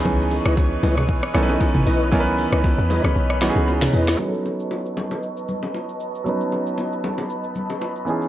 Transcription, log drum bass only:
X:1
M:4/4
L:1/16
Q:"Swing 16ths" 1/4=116
K:Bmix
V:1 name="Log drum bass" clef=bass
C,,3 C,,3 C,,3 z B,,,2 z G,,, B,,,2 | C,,3 C,,2 E,,2 C,, B,,,3 C,,3 E,,2 | z16 | z16 |]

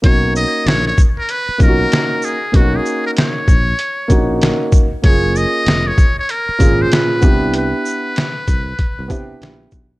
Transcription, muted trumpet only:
X:1
M:4/4
L:1/16
Q:"Swing 16ths" 1/4=96
K:Blyd
V:1 name="Muted trumpet"
c2 d2 c c2 A B2 A4 G2 | F G2 A c8 z4 | c2 d3 c2 c A3 =c B4 | B12- B2 z2 |]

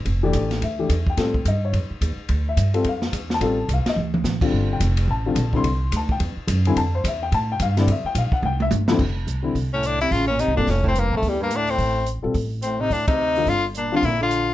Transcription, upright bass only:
X:1
M:4/4
L:1/8
Q:"Swing" 1/4=215
K:F
V:1 name="Upright bass" clef=bass
F,,,2 A,,,2 D,,2 E,,2 | A,,2 G,,2 F,, z _E,, z | D,,2 G,,2 F,,2 E,,2 | A,,,2 C,, z D,,2 A,,,2 |
G,,,2 F,,,2 A,,,2 B,,,2 | C,,2 D,,2 E,, z _G,,2 | F,,2 E,,2 A,,2 G,,2 | F,, z B,,, z C,,2 G,,,2 |
F,,,2 C,,2 C,,4 | A,,,2- (3A,,, C,, G,,, F,,,3 A,, | D,,4 A,,,3 B,,, | A,,,4 D,,4 |
G,,,4 B,,,4 |]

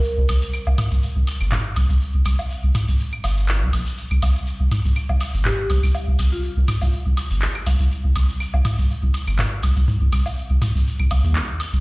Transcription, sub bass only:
X:1
M:4/4
L:1/16
Q:"Swing 16ths" 1/4=122
K:Cm
V:1 name="Sub bass" clef=bass
z C,, C,, z2 C,, z C,, z C,, z G,,, z2 C,, C,, | z C,, C,, z2 C,, z C,, z2 G,,,3 C,, B,,, z | z C,, C,, z2 C,, z C,, z C,, z G,,, z2 C,, C,, | z C,, C,, z2 C,, z C,, z C,, z G,,, z2 C,, C,, |
z C,, C,, z2 C,, z C,, z C,, z G,,, z2 C,, C,, | z C,, C,, z2 C,, z C,, z C,, C,, E,, z3 C,, |]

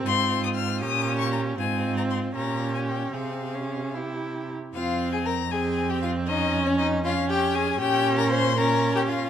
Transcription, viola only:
X:1
M:6/8
L:1/16
Q:3/8=78
K:Fm
V:1 name="Viola"
C6 D6 | C6 D6 | C3 D3 =E4 z2 | C6 C6 |
D6 D6 | D6 D6 |]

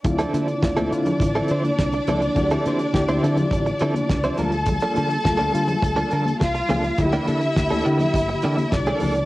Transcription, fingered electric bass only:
X:1
M:4/4
L:1/16
Q:1/4=104
K:Dm
V:1 name="Fingered electric bass" clef=bass
D,,2 D,2 D,, D,, D,2 A,,,2 D,2 C,,2 ^C,,2 | D,,2 D,2 D,, D,, D,2 A,,,2 D,2 ^C,,2 D,,2- | D,,2 D,2 D,, D,, D,2 D,,2 D,2 C,,2 ^C,,2 | D,,2 D,2 D,, D,, D,2 G,,,2 D,2 C,,2 ^C,,2 |]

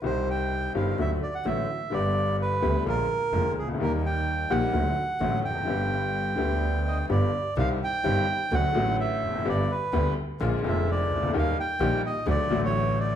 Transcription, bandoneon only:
X:1
M:4/4
L:1/16
Q:1/4=128
K:Gphr
V:1 name="Bandoneon"
c2 g4 f2 =e2 d ^f e4 | d4 =B4 _B6 A2 | B2 g4 ^f8 g2- | g8- g2 e2 d4 |
f2 g6 ^f4 =e4 | d2 =B4 z4 =e2 d4 | f2 g4 e2 d3 _d3 =d2 |]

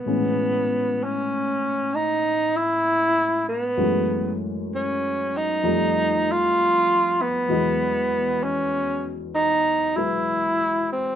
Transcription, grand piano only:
X:1
M:4/4
L:1/8
Q:"Swing" 1/4=65
K:Alyd
V:1 name="Grand piano" clef=bass
[A,,E,G,B,C]8 | [F,,E,G,A,F]4 [=F,,=F,=G,A,_E]4 | [E,,E,F,G,d]4- [E,,E,F,G,d] [F,G,EB]3 |]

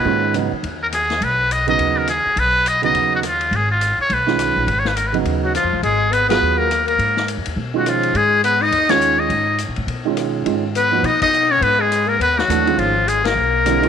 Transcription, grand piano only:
X:1
M:4/4
L:1/8
Q:"Swing" 1/4=207
K:G#dor
V:1 name="Grand piano"
[D,G,A,CDEF]2 [C,F,B,D] z4 z | z3 [C,F,B,D]3 z2 | z3 [C,F,B,D]3 z2 | z4 z [D,G,CE]3 |
z3 [C,F,B,D]3 z2 | z3 [F,B,EG]3 z2 | z4 z [D,G,CE]3 | z4 z [D,G,CE]3 |
z4 z [D,G,CE]3 | [D,G,CE] z2 [E,A,DF] z4 | z6 [=E,=A,=DF] [^D,G,C^E]- | [D,G,CE] z4 z [=D,=G,^B,=E] [^D,^G,C^E] |]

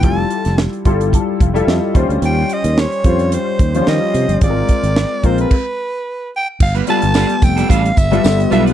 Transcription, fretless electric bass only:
X:1
M:4/4
L:1/16
Q:"Swing 16ths" 1/4=110
K:Gmix
V:1 name="Fretless electric bass" clef=bass
F,,,2 z F,,,2 z G,,,3 z F,,,2 F,, z _E,, D,, | _E,,2 z E,,2 z F,,3 z E,,2 _E, z C, G,,, | _A,,,2 z A,,,2 z _B,,,2 z8 | G,,,2 z G,,,2 z F,,,2 A,,,2 G,,,2 G,,,2 B,,,2 |]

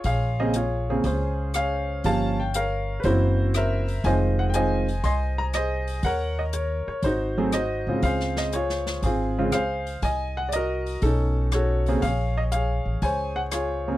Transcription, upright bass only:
X:1
M:4/4
L:1/8
Q:"Swing" 1/4=120
K:Bbm
V:1 name="Upright bass" clef=bass
B,,,4 D,,4 | =G,,,4 _G,,,4 | F,,,4 C,,4 | E,,3 z A,,,3 A,, |
D,,4 A,,,2 D,,2 | C,,4 =B,,,4 | B,,,3 =A,,, D,,4 |]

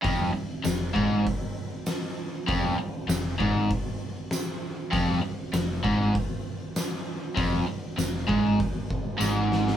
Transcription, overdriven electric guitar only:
X:1
M:4/4
L:1/8
Q:1/4=98
K:Fm
V:1 name="Overdriven electric guitar" clef=bass
F,, z F,, A,, z4 | F,, z F,, A,, z4 | F,, z F,, A,, z4 | F,, z F,, A,, z2 A,,2 |]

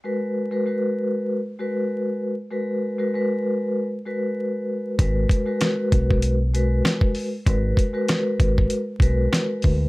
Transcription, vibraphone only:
X:1
M:4/4
L:1/16
Q:"Swing 16ths" 1/4=97
K:G#m
V:1 name="Vibraphone"
[G,FAB]3 [G,FAB] [G,FAB]4- [G,FAB] z [G,FAB]4- [G,FAB] z | [G,FAB]3 [G,FAB] [G,FAB]4- [G,FAB] z [G,FAB]6 | [G,FAB]3 [G,FAB] [G,FAB]4- [G,FAB] z [G,FAB]4- [G,FAB] z | [G,FAB]3 [G,FAB] [G,FAB]4- [G,FAB] z [G,FAB]6 |]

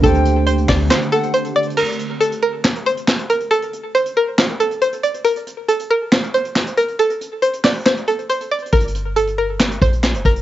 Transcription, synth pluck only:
X:1
M:4/4
L:1/8
Q:1/4=138
K:Gm
V:1 name="Synth pluck"
A2 c d c A c d | B2 A B z c2 B | A2 c B2 A c d | B2 A B z c2 B |
A2 c d c A c d | B2 A B z c2 B |]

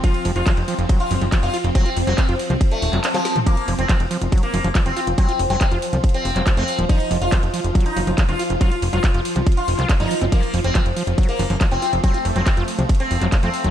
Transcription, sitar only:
X:1
M:4/4
L:1/16
Q:1/4=140
K:F
V:1 name="Sitar"
F2 z F2 z4 F3 z F2 z | C2 z C2 z4 A,3 z F,2 z | B,2 z C2 z4 B,3 z C2 z | C2 z C2 z4 C3 z C2 z |
_E2 z F2 z4 E3 z F2 z | F2 z F2 z4 F3 z _E2 z | B,2 z C2 z4 B,3 z C2 z | C2 z C2 z4 C3 z C2 z |]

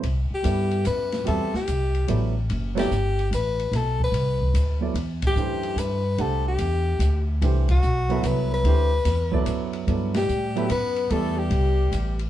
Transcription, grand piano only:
X:1
M:3/4
L:1/8
Q:"Swing" 1/4=146
K:Clyd
V:1 name="Grand piano"
z2 [G,B,EAd]3 z | [G,CFBe] z3 [F,B,EAd] z | z [F,B,EAd] z4 | z4 z [F,B,EAd] |
z2 [E,A,DGc]3 z | [A,DGcf]4- [A,DGcf] z | [E,A,DGc] z2 [F,B,EAB]3 | [E,A,DGc] z2 [F,B,EAd]3 |
[F,B,EAd] z2 [F,B,EAB] z2 | [G,B,EAd]4- [G,B,EAd] z |]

